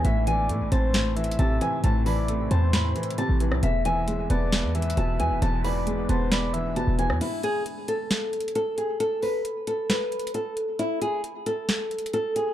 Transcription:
<<
  \new Staff \with { instrumentName = "Nylon-string guitar" } { \time 4/4 \key e \phrygian \tempo 4 = 134 e''8 gis''8 r8 a''4. a''8 gis''8 | a''8 b''8 r8 a''8 b''4 a''8 r8 | e''8 gis''8 r8 a''4. a''8 gis''8 | a''8 b''8 r8 a''8 b''4 a''8 gis''8 |
e'8 gis'8 r8 a'4. a'8 gis'8 | a'8 b'8 r8 a'8 b'4 a'8 r8 | e'8 gis'8 r8 a'4. a'8 gis'8 | }
  \new Staff \with { instrumentName = "Soft synth lead" } { \time 4/4 \key e \phrygian r8 d''4 c''4 e''4. | r8 d''4 c''4. r4 | r8 e''4 d''4 e''4. | r8 d''4 c''8 d''8 e''8 r4 |
r1 | r1 | r1 | }
  \new Staff \with { instrumentName = "Ambient pad" } { \time 4/4 \key e \phrygian << { <a c' c''>1~ | <a c' c''>1 | <gis b b'>1~ | <gis b b'>1 |
r1 | r1 | r1 | } \\ { e'1~ | e'1 | e'1 | d'1 |
r1 | r1 | r1 | } >> }
  \new Staff \with { instrumentName = "Felt piano" } { \clef bass \time 4/4 \key e \phrygian a,8 e8 a8 c'8 a,8 e8 c8 e8 | a,8 e8 a8 c'8 a,8 e8 c8 e8 | e,8 e8 gis8 b8 e,8 e8 b,8 e8 | e,8 e8 gis8 b8 e,8 e8 b,8 e8 |
r1 | r1 | r1 | }
  \new Staff \with { instrumentName = "808-style bass" } { \clef bass \time 4/4 \key e \phrygian a,,4 a,16 a,,16 a,,4. a,,8 r8 | a,,4. e,4 r8. a,,8 c,16 | e,,4. e,,8. e,8. e,,8 e,16 e,,16 | e,,4. e,,4.~ e,,16 e,,8 e,16 |
r1 | r1 | r1 | }
  \new DrumStaff \with { instrumentName = "Drums" } \drummode { \time 4/4 hh8 hh8 hh8 hh8 \tuplet 3/2 { <hh sn>16 r16 r16 hh16 hh16 hh16 } hh8 hh8 | hh8 hho8 hh8 hh8 \tuplet 3/2 { <hh sn>16 r16 r16 hh16 hh16 hh16 } hh8 hh16 ss16 | hh8 hh8 hh8 hh8 \tuplet 3/2 { <hh sn>16 r16 r16 hh16 hh16 hh16 } hh8 hh8 | hh8 hho8 hh8 hh8 <hh sn>8 hh8 hh8 hh16 ss16 |
<cymc hh>8 hh8 hh8 hh8 \tuplet 3/2 { <hh sn>16 r16 r16 hh16 hh16 hh16 } hh8 hh8 | hh8 hho8 hh8 hh8 \tuplet 3/2 { <hh sn>16 r16 r16 hh16 hh16 hh16 } hh8 hh8 | hh8 hh8 hh8 hh8 \tuplet 3/2 { <hh sn>16 r16 r16 hh16 hh16 hh16 } hh8 hh8 | }
>>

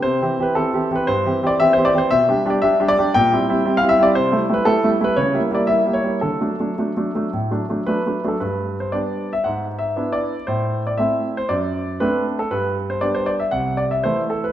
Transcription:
<<
  \new Staff \with { instrumentName = "Grand piano" } { \time 4/4 \key c \major \tempo 4 = 116 c''8. b'16 a'8. b'16 c''8. d''16 e''16 c''16 d''16 c''16 | e''8. d''16 e''8 d''8 g''4~ g''16 f''16 e''16 d''16 | \key g \major c''8. b'16 a'8. b'16 cis''8. d''16 e''8 cis''8 | a'2. b'8. a'16 |
b'8. c''16 d''8. e''16 \tuplet 3/2 { fis''4 e''8~ e''8 d''4 } | c''8. d''16 e''8. c''16 d''4 b'8. a'16 | b'8. c''16 d''16 c''16 d''16 e''16 fis''8 d''16 e''16 c''8 a'16 b'16 | }
  \new Staff \with { instrumentName = "Grand piano" } { \time 4/4 \key c \major \tuplet 3/2 { c8 <e c' g'>8 <e c' g'>8 <e c' g'>8 <e c' g'>8 <e c' g'>8 g,8 <e c' g'>8 <e c' g'>8 <e c' g'>8 <e c' g'>8 <e c' g'>8 } | \tuplet 3/2 { b,8 <g d' g'>8 <g d' g'>8 <g d' g'>8 <g d' g'>8 <g d' g'>8 bes,8 <g c' e'>8 <g c' e'>8 <g c' e'>8 <g c' e'>8 <g c' e'>8 } | \key g \major \tuplet 3/2 { c8 <g a e'>8 <g a e'>8 <g a e'>8 <g a e'>8 <g a e'>8 cis8 <g ais e'>8 <g ais e'>8 <g ais e'>8 <g ais e'>8 <g ais e'>8 } | \tuplet 3/2 { d8 <fis a d'>8 <fis a d'>8 <fis a d'>8 <fis a d'>8 <fis a d'>8 a,8 <fis a d'>8 <fis a d'>8 <fis a d'>8 <fis a d'>8 <fis a d'>8 } |
g,4 <g b d'>4 gis,4 <b d' e'>4 | a,4 <a c' e'>4 fis,4 <a c' d'>4 | g,4 <g b d'>4 c,4 <e a e'>4 | }
>>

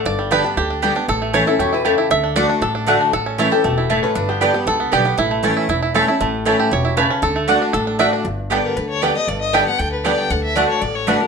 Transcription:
<<
  \new Staff \with { instrumentName = "Fiddle" } { \time 4/4 \key g \lydian \tempo 4 = 234 r1 | r1 | r1 | r1 |
r1 | r1 | r1 | r1 |
r4. bes'8 b'8 cis''8 d''8 ees''8 | d''8 ees''8 e''8 fis''8 g''8 b'8 d''8 g''8 | fis''8 e''8 d''8 cis''8 d''8 cis''8 b'8 bes'8 | }
  \new Staff \with { instrumentName = "Mandolin" } { \time 4/4 \key g \lydian r4 <b g' d'' g''>8 r4. <b g' d'' g''>8 r8 | r4 <a e' cis'' a''>8 r4. <a e' cis'' a''>8 r8 | r4 <a fis' d'' fis''>8 r4. <a fis' d'' fis''>8 r8 | r4 <a e' cis'' a''>8 r4. <a e' cis'' a''>8 r8 |
r4 <b g' d'' g''>8 r4. <b g' d'' g''>8 r8 | r4 <a e' cis'' a''>8 r4. <a e' cis'' a''>8 r8 | r4 <a e' cis'' a''>8 r4. <a e' cis'' a''>8 r8 | r4 <a fis' d'' fis''>8 r4. <a fis' d'' fis''>8 r8 |
r4 <b g' d'' g''>8 r4. <b g' d'' g''>8 r8 | r4 <b g' d'' g''>8 r4. <b g' d'' g''>8 r8 | r4 <a fis' d'' fis''>8 r4. <a fis' d'' fis''>8 r8 | }
  \new Staff \with { instrumentName = "Resonator guitar played with a steel bar" } { \time 4/4 \key g \lydian r1 | r4. a'8 cis''8 b'8 a'8. r16 | r1 | r4. a'2 b'8~ |
b'8 g'4~ g'16 r2 r16 | r1 | r1 | r1 |
r1 | r1 | r1 | }
  \new Staff \with { instrumentName = "Five-string banjo" } { \time 4/4 \key g \lydian << { d''4 b'4 g'2 | a'4 cis''8 r2 r8 | e''4 d''4 a'2 | a'4 e'8 r2 r8 |
r2 a'4 g'4 | e'2 e'4 a'8 r8 | r2 cis''4 b'4 | a'2 a'4 e''8 r8 |
r4 <g b d'>8 r4. <g b d'>8 r8 | r4 <g b d'>8 r4. <g b d'>8 r8 | r4 <a d'>8 r4. <a d'>8 r8 | } \\ { r8 g4 d'4 d'8 g'8 d'8 | r8 a4 e'8 g'8 e'8 g'8 e'8 | r8 d'4 d'4 d'8 a8 d'8 | r8 cis'4 g'8 a8 e'8 a8 cis'8 |
d'8 b8 g8 b4 b4 b8 | r8 a8 cis'8 e'4 e'4 e'8 | a4 e'8 g'4 e'4 cis'8 | r8 a8 d'8 d'4 d'4 d'8 |
r1 | r1 | r1 | } >> }
  \new Staff \with { instrumentName = "Steel-string acoustic guitar" } { \time 4/4 \key g \lydian << { r4 <d g b g'>8 <b g'>8 r4 <d g b g'>8 <b g'>8 | r4 <e a cis' e'>8 <cis' e'>8 r2 | r4 <d a d' fis'>4 r4 <d a d' fis'>4 | r4 <e a cis' e'>8 <cis' e'>8 r2 |
r4 <d g b g'>8 <b g'>8 r4 <d g b g'>8 <b g'>8 | r4 <e a cis' e'>4 r4 <e a cis' e'>8 <cis' e'>8 | r4 <e a cis' e'>4 r2 | r4 <d a d' fis'>4 r4 <d a d' fis'>4 |
r4 <d g b g'>4 r4 <d g b g'>8 <b g'>8 | r4 <d g b g'>8 <b g'>8 r4 <d g b g'>4 | r4 <d a d' fis'>4 r4 <d a d' fis'>8 <d' fis'>8 | } \\ { g,2 d2 | a,2 b,4 cis4 | d2 a,2 | a,2 b,4 a,4 |
g,2 d2 | a,2 e,2 | a,2 b,4 cis4 | d2 a,2 |
g,2 d2 | g,2 d2 | d2 a,2 | } >> }
  \new Staff \with { instrumentName = "Upright bass" } { \clef bass \time 4/4 \key g \lydian g,,2 d,2 | a,,2 e,2 | d,2 a,,2 | a,,2 e,,2 |
g,,2 cis,4 b,,4 | a,,2 e,,2 | a,,2 e,,2 | d,2 a,,2 |
g,,2 d,2 | g,,2 d,2 | d,2 a,,2 | }
>>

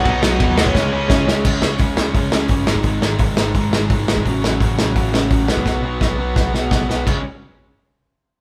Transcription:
<<
  \new Staff \with { instrumentName = "Overdriven electric guitar" } { \time 4/4 \key b \mixolydian \tempo 4 = 171 <dis' dis''>8 <dis' dis''>4 <cis' cis''>2 r8 | r1 | r1 | r1 |
r1 | r1 | }
  \new Staff \with { instrumentName = "Overdriven electric guitar" } { \clef bass \time 4/4 \key b \mixolydian <b, fis b>8 <b, fis b>8 <b, fis b>8 <b, fis b>8 <cis gis cis'>8 <cis gis cis'>8 <cis gis cis'>8 <cis gis cis'>8 | r1 | r1 | r1 |
r1 | r1 | }
  \new Staff \with { instrumentName = "Overdriven electric guitar" } { \clef bass \time 4/4 \key b \mixolydian <b, fis b>8 <b, fis b>8 <b, fis b>8 <b, fis b>8 <cis gis cis'>8 <cis gis cis'>8 <cis gis cis'>8 <cis gis cis'>8 | <cis gis cis'>8 <cis gis cis'>8 <cis gis cis'>8 <cis gis cis'>8 <cis gis cis'>8 <cis gis cis'>8 <cis gis cis'>8 <gis, dis gis>8 | <gis, dis gis>8 <gis, dis gis>8 <gis, dis gis>8 <gis, dis gis>8 <gis, dis gis>8 <gis, dis gis>8 <gis, dis gis>8 <gis, dis gis>8 | <fis, cis fis>8 <fis, cis fis>8 <fis, cis fis>8 <fis, cis fis>8 <fis, cis fis>8 <fis, cis fis>8 <fis, cis fis>8 <b, fis b>8 |
<b, fis b>8 <b, fis b>8 <b, fis b>8 <b, fis b>8 <b, fis b>8 <b, fis b>8 <b, fis b>8 <b, fis b>8 | <cis gis cis'>8 r2. r8 | }
  \new Staff \with { instrumentName = "Overdriven electric guitar" } { \clef bass \time 4/4 \key b \mixolydian <b, fis b>8 <b, fis b>8 <b, fis b>8 <b, fis b>8 <cis gis cis'>8 <cis gis cis'>8 <cis gis cis'>8 <cis gis cis'>8 | <cis gis cis'>8 <cis gis cis'>8 <cis gis cis'>8 <cis gis cis'>8 <cis gis cis'>8 <cis gis cis'>8 <cis gis cis'>8 <gis, dis gis>8 | <gis, dis gis>8 <gis, dis gis>8 <gis, dis gis>8 <gis, dis gis>8 <gis, dis gis>8 <gis, dis gis>8 <gis, dis gis>8 <gis, dis gis>8 | <fis, cis fis>8 <fis, cis fis>8 <fis, cis fis>8 <fis, cis fis>8 <fis, cis fis>8 <fis, cis fis>8 <fis, cis fis>8 <b, fis b>8 |
<b, fis b>8 <b, fis b>8 <b, fis b>8 <b, fis b>8 <b, fis b>8 <b, fis b>8 <b, fis b>8 <b, fis b>8 | <cis gis cis'>8 r2. r8 | }
  \new Staff \with { instrumentName = "Picked electric bass" } { \clef bass \time 4/4 \key b \mixolydian b,,8 b,,8 dis,4 cis,8 cis,8 cis,8 cis,8 | cis,8 cis,8 cis,8 cis,8 cis,8 cis,8 g,,8 gis,,8 | gis,,8 gis,,8 gis,,8 gis,,8 gis,,8 gis,,8 gis,,8 gis,,8 | a,,8 a,,8 a,,8 a,,8 a,,8 a,,8 a,,8 b,,8 |
b,,8 b,,8 b,,8 b,,8 b,,8 b,,8 b,,8 b,,8 | cis,8 r2. r8 | }
  \new DrumStaff \with { instrumentName = "Drums" } \drummode { \time 4/4 <bd cymr>8 sn8 <bd cymr>8 sn16 bd16 <bd sn>4 <bd sn>8 sn8 | <cymc bd>8 sn8 <hho bd>8 sn8 <hho bd>8 sn8 <hho bd>8 sn16 bd16 | <hho bd>8 sn8 <hho bd>8 sn8 <hho bd>8 sn8 <hho bd>8 sn16 bd16 | <hho bd>8 sn8 <hho bd>8 sn8 <hho bd>8 sn8 <hho bd>8 sn16 bd16 |
<bd sn>4 <bd sn>4 <bd sn>8 sn8 <bd sn>8 sn8 | <cymc bd>4 r4 r4 r4 | }
>>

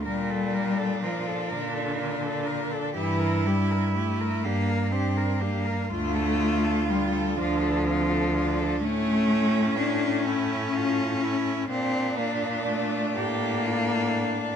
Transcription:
<<
  \new Staff \with { instrumentName = "Cello" } { \time 6/8 \key bes \lydian \tempo 4. = 41 bes'16 a'16 bes'16 a'16 bes'16 a'16 bes'16 a'16 bes'16 a'16 bes'16 a'16 | g'16 bes'16 g'16 bes'16 g'16 bes'16 g'16 bes'16 g'16 bes'16 g'16 bes'16 | f'16 a'16 f'16 a'16 f'16 a'16 f'16 a'16 f'16 a'16 f'16 a'16 | cis'2. |
d'2. | }
  \new Staff \with { instrumentName = "Cello" } { \time 6/8 \key bes \lydian d'2. | e'4. d'4. | f'4. d'8 c'8 d'8 | cis'4. e'8 f'8 e'8 |
d'4. g'8 f'8 d'8 | }
  \new Staff \with { instrumentName = "Cello" } { \time 6/8 \key bes \lydian g4 f8 d4. | e8 g8 a8 bes8 c'8 bes8 | a4 g8 f4. | a4 d'8 cis'4. |
c'8 bes8 a8 bes4. | }
  \new Staff \with { instrumentName = "Cello" } { \clef bass \time 6/8 \key bes \lydian bes,4. bes,4. | g,4. g,4. | d,4. d,4. | a,2. |
bes,4. a,4. | }
>>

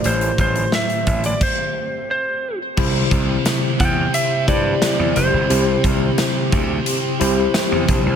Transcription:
<<
  \new Staff \with { instrumentName = "Lead electric guitar" } { \time 4/4 \key c \mixolydian \tempo 4 = 88 c''8 c''8 e''8. d''16 c''4 c''8. r16 | r4. g''8 e''8 d''4 c''8~ | c''2.~ c''8 r8 | }
  \new Staff \with { instrumentName = "Tine electric piano" } { \time 4/4 \key c \mixolydian <a, a e' g' c''>4 r2. | <c e' g' c''>4. r4 <e' g' c''>4 r8 | <c e' g' c''>4. r4 <e' g' c''>4 r8 | }
  \new Staff \with { instrumentName = "Ambient pad" } { \time 4/4 \key c \mixolydian <a c' g'>2 r2 | <c c' g'>1~ | <c c' g'>1 | }
  \new Staff \with { instrumentName = "Distorted electric guitar" } { \clef bass \time 4/4 \key c \mixolydian r1 | <c g c'>4. <g c'>8 <c g c'>4 <c g c'>4 | <c g c'>4. <g c'>8 <c g c'>4 <c g c'>4 | }
  \new Staff \with { instrumentName = "Slap bass" } { \clef bass \time 4/4 \key c \mixolydian a,,8 a,,8 r8 a,,8 r2 | c,8 c,8 r8 e,8 r8 g,8 r16 e,16 f,,16 g,,16 | c,8 c,8 r8 d,8 r8 c,8 r16 e,16 bes,,16 c,16 | }
  \new DrumStaff \with { instrumentName = "Drums" } \drummode { \time 4/4 hh16 hh16 <hh bd>16 hh16 sn16 hh16 <hh bd>16 hh16 <cymc bd>4 r4 | <cymc bd>8 <hh bd>8 <hh sn tamb>8 <hh bd>8 hh8 <hh bd>8 <hh sn tamb>8 hh8 | hh8 <hh bd>8 <hh sn tamb>8 <hh bd>8 hh8 hh8 <hh sn tamb>8 <hh bd>8 | }
>>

